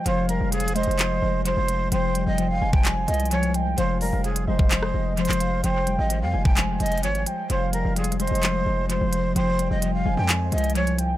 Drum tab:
HH |x-----------x-----------x---x---x---x---x---x---x-----------------------x-----------x-----------|x-----------x-----------x-----------------------x-----------x--x--x--x--x-----x-----x-----------|x-----------o-----------x-----x-----------------x-----------------------x---x---x---x-----------|x-----------x-----------x-----------------------x-----------x--x--x--x--x-----x-----x-----------|
CP |------------------------------------------------x-----------------------------------------------|------------------------------------------------x-----------------------------------------------|------------------------------------------------x-----------------------------x-----------------|------------------------------------------------x-----------------------------------------------|
SD |------------------------------------------------------------------------------------------------|------------------------------------------------------------------------------------------------|------------------------------------------------------r-----------------------------------------|------------------------------------------------------------------------------------------------|
BD |------------------------------------------------------------------------------------------------|------------------------------------------o-----------------------------------------------------|------------------------------------------o-----------------------------------------------------|------------------------------------------o-----------------------------------------------------|

HH |x-----------x-----------x---x---x---x---x---x---x-----------------------x-----------x-----------|x-----------x-----------x-----------------------x-----------x--x--x--x--x-----x-----x-----------|
CP |------------------------------------------------x-----------------------------------------------|------------------------------------------------x-----------------------------------------------|
SD |------------------------------------------------------------------------------------------------|------------------------------------------------------------------------------------------------|
BD |------------------------------------------------------------------------------------------------|------------------------------------------------------------------------------------------------|